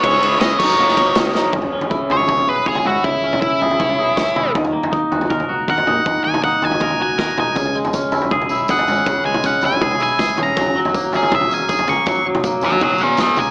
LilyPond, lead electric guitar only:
\new Staff \with { instrumentName = "Lead electric guitar" } { \time 4/4 \key cis \dorian \tempo 4 = 160 cis''4 dis''8 cis''4. r4 | r4. cis''4 b'8 gis'8 fis'8 | e'4 e'2. | r2. fis''4~ |
fis''8 gis''8 fis''8 gis''4 gis''4 gis''8~ | gis''8 r2 r8 fis''4~ | fis''8 gis''8 fis''8 gis''4 gis''4 ais''8~ | ais''8 r4 gis'8 e''8 gis''4 cis'''8 |
cis'''8 r4 <cis'' fis''>8 <cis'' fis''>8 <gis' e''>8 <gis' e''>8 gis''8 | }